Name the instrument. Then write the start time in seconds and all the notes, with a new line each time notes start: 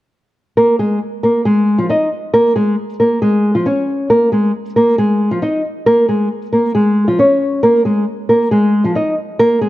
nylon-string guitar
0.57 A#3 A#4
0.79 G#3 G#4
1.23 A#3 A#4
1.45 G#3 G#4
1.78 F3 F4
1.89 D#4 D#5
2.34 A#3 A#4
2.56 G#3 G#4
3.00 A#3 A#4
3.22 G#3 G#4
3.55 F3 F4
3.66 C#4 C#5
4.10 A#3 A#4
4.32 G#3 G#4
4.76 A#3 A#4
4.98 G#3 G#4
5.31 F3 F4
5.42 D#4 D#5
5.86 A#3 A#4
6.08 G#3 G#4
6.53 A#3 A#4
6.75 G#3 G#4
7.08 F3 F4
7.19 C#4 C#5
7.63 A#3 A#4
7.85 G#3 G#4
8.29 A#3 A#4
8.51 G#3 G#4
8.84 F3 F4
8.95 D#4 D#5
9.39 A#3 A#4
9.61 G#3 G#4